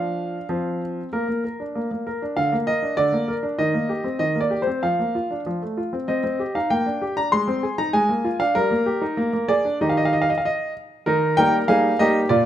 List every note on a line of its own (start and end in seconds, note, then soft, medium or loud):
0.00 0.37 F3 soft
0.00 0.45 D4 soft
0.00 0.81 F5 medium
0.49 1.00 F3 soft
0.49 1.08 C4 soft
1.13 1.27 A#3 soft
1.13 1.43 A#4 medium
1.28 1.45 A#3 soft
1.44 1.60 A#4 soft
1.60 1.76 D4 soft
1.75 1.90 A#3 soft
1.91 2.07 A#3 soft
2.07 2.22 A#4 soft
2.22 2.37 D4 soft
2.37 2.51 D3 soft
2.37 2.55 F5 medium
2.52 2.68 A#3 soft
2.67 2.83 A#4 soft
2.67 2.97 D#5 medium
2.82 2.98 D4 soft
2.97 3.12 D3 soft
2.97 3.34 D5 medium
3.12 3.28 A#3 soft
3.28 3.44 A#4 soft
3.43 3.58 D4 soft
3.59 3.73 D#3 soft
3.59 4.16 D#5 medium
3.74 3.90 A#3 soft
3.89 4.05 G4 soft
4.04 4.20 C4 soft
4.19 4.35 D#3 soft
4.19 4.38 D#5 medium
4.35 4.52 A#3 soft
4.41 4.60 D5 medium
4.50 4.67 G4 soft
4.62 4.81 C5 medium
4.67 4.83 C4 soft
4.83 4.98 F3 soft
4.83 5.39 F5 medium
4.99 5.16 A#3 soft
5.15 5.31 F4 soft
5.31 5.46 D4 soft
5.46 5.61 F3 soft
5.62 5.78 A3 soft
5.77 5.94 F4 soft
5.93 6.07 C4 soft
6.08 6.22 C4 soft
6.08 6.55 D#5 medium
6.24 6.40 C4 soft
6.39 6.56 G4 soft
6.55 6.70 D#4 soft
6.55 6.71 F5 medium
6.70 6.86 A#3 soft
6.70 7.13 G5 medium
6.86 7.02 D4 soft
7.02 7.18 G4 soft
7.17 7.32 D4 soft
7.17 7.32 A#5 medium
7.32 7.47 G#3 soft
7.32 7.74 C6 medium
7.48 7.64 C4 soft
7.63 7.79 G#4 soft
7.78 7.94 D#4 soft
7.78 7.94 A#5 medium
7.93 8.08 G#3 medium
7.93 8.35 G#5 medium
8.09 8.25 A#3 soft
8.24 8.40 F4 soft
8.40 8.55 D4 soft
8.40 8.55 F5 medium
8.55 8.70 G3 soft
8.55 9.45 A#4 medium
8.71 8.87 A#3 soft
8.86 9.02 G4 medium
9.02 9.17 D#4 soft
9.17 9.32 A#3 medium
9.33 9.50 A#3 soft
9.48 9.65 G#4 soft
9.48 9.77 D5 medium
9.65 9.80 D4 soft
9.81 10.25 D#3 soft
9.81 10.31 D#4 soft
9.81 10.31 G4 soft
9.81 9.89 D#5 medium
9.89 9.97 F5 medium
9.97 10.05 D#5 medium
10.05 10.13 F5 medium
10.13 10.21 D#5 medium
10.22 10.30 F5 medium
10.30 10.38 D#5 medium
10.38 10.46 F5 medium
10.45 10.72 D#5 medium
11.06 11.36 D#3 medium
11.06 11.36 D#4 medium
11.06 11.37 A#4 medium
11.37 11.60 G3 soft
11.37 11.60 A#3 soft
11.37 11.60 D#4 medium
11.37 11.67 A#4 medium
11.37 11.56 G5 medium
11.68 11.91 G3 soft
11.68 11.91 A#3 soft
11.68 11.91 D#4 medium
11.68 11.97 G#4 medium
11.68 11.99 F5 medium
11.99 12.22 G3 soft
11.99 12.22 A#3 soft
11.99 12.22 D#4 soft
11.99 12.29 G4 medium
11.99 12.18 D#5 medium
12.29 12.46 A#2 medium
12.29 12.45 F4 medium
12.29 12.45 D5 medium